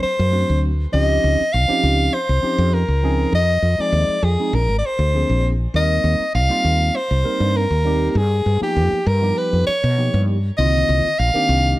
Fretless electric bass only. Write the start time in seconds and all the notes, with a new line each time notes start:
0.04 muted fretless electric bass stroke
0.19 F#2
0.50 D2
0.94 C#2
1.24 C#2
1.40 muted fretless electric bass stroke
1.54 C2
1.70 muted fretless electric bass stroke
1.83 C#2
2.29 C2
2.58 F2
2.88 C#2
3.33 F2
3.62 F2
3.79 muted fretless electric bass stroke
3.92 D#2
4.09 muted fretless electric bass stroke
4.23 F2
4.53 A#1
4.69 G#1
4.99 D2
5.29 A#1
5.74 D#2
6.04 D#2
6.20 muted fretless electric bass stroke
6.35 C2
6.64 D#2
7.11 C2
7.40 G2
7.70 D#2
8.15 G2
8.46 G2
8.61 muted fretless electric bass stroke
8.76 F2
8.93 muted fretless electric bass stroke
9.06 G2
9.53 F2
9.68 muted fretless electric bass stroke
9.84 B2
10.14 G2
10.59 C2
10.89 C2
11.19 A#1
11.49 C2